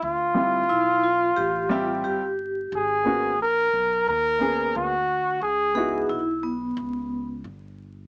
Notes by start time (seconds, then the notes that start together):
0.02 D2 F4
0.34 G3 C4 E4 F4
0.69 B1 E4
1.04 F4
1.36 A1 G4
1.69 G3 C4 F4 G4 E5
2.04 G1 G4
2.72 G#1 G#4
3.04 A#3 B3 C#4 F#4
3.40 A#1 A#4
3.73 B1
4.08 D#2 A#4
4.39 A#3 B3 C#4 G#4
4.75 D2 F#4
5.41 C#2 G#4
5.75 B3 D#4 E4 F#4 G#4
6.09 B1 E4
6.43 B3
6.77 C#2
7.44 G1